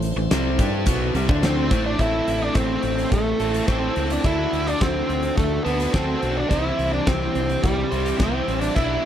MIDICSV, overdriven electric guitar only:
0, 0, Header, 1, 2, 480
1, 0, Start_track
1, 0, Tempo, 563380
1, 1700, Time_signature, 4, 2, 24, 8
1, 7711, End_track
2, 0, Start_track
2, 0, Title_t, "Overdriven electric guitar"
2, 0, Program_c, 0, 29
2, 0, Note_on_c, 0, 45, 62
2, 0, Note_on_c, 0, 52, 72
2, 99, Note_off_c, 0, 45, 0
2, 103, Note_off_c, 0, 52, 0
2, 146, Note_on_c, 0, 45, 66
2, 148, Note_on_c, 0, 52, 69
2, 263, Note_off_c, 0, 45, 0
2, 267, Note_off_c, 0, 52, 0
2, 267, Note_on_c, 0, 48, 90
2, 274, Note_on_c, 0, 55, 89
2, 277, Note_on_c, 0, 60, 96
2, 491, Note_off_c, 0, 55, 0
2, 498, Note_off_c, 0, 48, 0
2, 501, Note_on_c, 0, 55, 76
2, 503, Note_off_c, 0, 60, 0
2, 507, Note_on_c, 0, 62, 78
2, 514, Note_on_c, 0, 67, 93
2, 735, Note_off_c, 0, 55, 0
2, 736, Note_on_c, 0, 47, 96
2, 738, Note_off_c, 0, 62, 0
2, 741, Note_off_c, 0, 67, 0
2, 742, Note_on_c, 0, 54, 106
2, 745, Note_on_c, 0, 59, 102
2, 972, Note_off_c, 0, 47, 0
2, 975, Note_off_c, 0, 54, 0
2, 976, Note_off_c, 0, 59, 0
2, 984, Note_on_c, 0, 48, 93
2, 991, Note_on_c, 0, 55, 104
2, 1096, Note_off_c, 0, 48, 0
2, 1099, Note_off_c, 0, 55, 0
2, 1105, Note_on_c, 0, 50, 77
2, 1109, Note_on_c, 0, 57, 81
2, 1114, Note_on_c, 0, 62, 84
2, 1455, Note_off_c, 0, 50, 0
2, 1457, Note_off_c, 0, 57, 0
2, 1459, Note_off_c, 0, 62, 0
2, 1465, Note_on_c, 0, 45, 86
2, 1467, Note_on_c, 0, 52, 82
2, 1473, Note_on_c, 0, 57, 86
2, 1684, Note_off_c, 0, 45, 0
2, 1693, Note_off_c, 0, 57, 0
2, 1694, Note_on_c, 0, 45, 65
2, 1696, Note_off_c, 0, 52, 0
2, 1703, Note_on_c, 0, 57, 74
2, 1709, Note_on_c, 0, 60, 74
2, 1714, Note_on_c, 0, 64, 82
2, 1722, Note_on_c, 0, 69, 78
2, 2881, Note_off_c, 0, 45, 0
2, 2886, Note_off_c, 0, 57, 0
2, 2888, Note_off_c, 0, 60, 0
2, 2890, Note_off_c, 0, 69, 0
2, 2901, Note_off_c, 0, 64, 0
2, 2901, Note_on_c, 0, 69, 73
2, 2904, Note_on_c, 0, 64, 71
2, 2913, Note_on_c, 0, 60, 64
2, 2918, Note_on_c, 0, 57, 65
2, 2925, Note_on_c, 0, 45, 54
2, 3125, Note_off_c, 0, 69, 0
2, 3127, Note_off_c, 0, 45, 0
2, 3131, Note_off_c, 0, 60, 0
2, 3134, Note_off_c, 0, 57, 0
2, 3137, Note_on_c, 0, 45, 62
2, 3143, Note_on_c, 0, 57, 66
2, 3153, Note_off_c, 0, 64, 0
2, 3154, Note_on_c, 0, 60, 67
2, 3157, Note_on_c, 0, 64, 63
2, 3165, Note_on_c, 0, 69, 68
2, 3604, Note_off_c, 0, 45, 0
2, 3607, Note_off_c, 0, 57, 0
2, 3613, Note_off_c, 0, 60, 0
2, 3616, Note_on_c, 0, 50, 75
2, 3618, Note_off_c, 0, 69, 0
2, 3625, Note_on_c, 0, 62, 84
2, 3631, Note_off_c, 0, 64, 0
2, 3634, Note_on_c, 0, 66, 78
2, 3645, Note_on_c, 0, 69, 80
2, 4801, Note_off_c, 0, 69, 0
2, 4806, Note_off_c, 0, 50, 0
2, 4810, Note_off_c, 0, 62, 0
2, 4811, Note_on_c, 0, 69, 75
2, 4813, Note_off_c, 0, 66, 0
2, 4823, Note_on_c, 0, 66, 70
2, 4831, Note_on_c, 0, 62, 71
2, 4839, Note_on_c, 0, 50, 62
2, 5040, Note_off_c, 0, 50, 0
2, 5043, Note_off_c, 0, 69, 0
2, 5049, Note_off_c, 0, 66, 0
2, 5050, Note_off_c, 0, 62, 0
2, 5050, Note_on_c, 0, 50, 66
2, 5061, Note_on_c, 0, 62, 62
2, 5071, Note_on_c, 0, 66, 72
2, 5077, Note_on_c, 0, 69, 71
2, 5523, Note_off_c, 0, 50, 0
2, 5528, Note_off_c, 0, 62, 0
2, 5529, Note_on_c, 0, 48, 77
2, 5534, Note_off_c, 0, 66, 0
2, 5536, Note_off_c, 0, 69, 0
2, 5537, Note_on_c, 0, 52, 90
2, 5543, Note_on_c, 0, 55, 87
2, 5546, Note_on_c, 0, 60, 78
2, 5553, Note_on_c, 0, 64, 83
2, 5555, Note_on_c, 0, 72, 80
2, 6725, Note_off_c, 0, 48, 0
2, 6729, Note_off_c, 0, 52, 0
2, 6733, Note_off_c, 0, 55, 0
2, 6734, Note_off_c, 0, 60, 0
2, 6735, Note_off_c, 0, 72, 0
2, 6737, Note_off_c, 0, 64, 0
2, 6745, Note_on_c, 0, 72, 74
2, 6755, Note_on_c, 0, 60, 72
2, 6755, Note_on_c, 0, 64, 64
2, 6763, Note_on_c, 0, 55, 71
2, 6767, Note_on_c, 0, 52, 69
2, 6772, Note_on_c, 0, 48, 57
2, 6972, Note_off_c, 0, 72, 0
2, 6977, Note_off_c, 0, 60, 0
2, 6977, Note_off_c, 0, 64, 0
2, 6979, Note_off_c, 0, 48, 0
2, 6981, Note_off_c, 0, 55, 0
2, 6983, Note_off_c, 0, 52, 0
2, 6989, Note_on_c, 0, 48, 66
2, 6993, Note_on_c, 0, 52, 62
2, 6999, Note_on_c, 0, 55, 67
2, 7004, Note_on_c, 0, 60, 68
2, 7010, Note_on_c, 0, 64, 66
2, 7016, Note_on_c, 0, 72, 70
2, 7456, Note_off_c, 0, 48, 0
2, 7457, Note_off_c, 0, 52, 0
2, 7460, Note_off_c, 0, 55, 0
2, 7463, Note_off_c, 0, 60, 0
2, 7466, Note_off_c, 0, 64, 0
2, 7467, Note_on_c, 0, 59, 82
2, 7469, Note_off_c, 0, 72, 0
2, 7477, Note_on_c, 0, 62, 80
2, 7486, Note_on_c, 0, 67, 79
2, 7496, Note_on_c, 0, 71, 78
2, 7711, Note_off_c, 0, 59, 0
2, 7711, Note_off_c, 0, 62, 0
2, 7711, Note_off_c, 0, 67, 0
2, 7711, Note_off_c, 0, 71, 0
2, 7711, End_track
0, 0, End_of_file